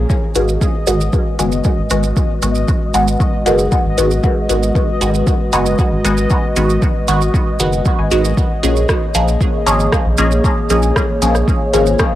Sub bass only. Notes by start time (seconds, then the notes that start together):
0.36 G#1
0.87 G#1
1.39 F#1
1.78 G#1
1.91 G#1
2.42 G#1
2.94 G#1
3.46 F#1
3.85 G#1
3.98 G#1
4.49 G#1
5.01 G#1
5.53 F#1
5.92 G#1
6.05 G#1
6.56 G#1
7.08 G#1
7.60 F#1
7.99 G#1
8.12 G#1
8.63 A#1
9.15 A#1
9.67 G#1
10.05 A#1
10.18 A#1
10.70 A#1
11.22 A#1
11.74 G#1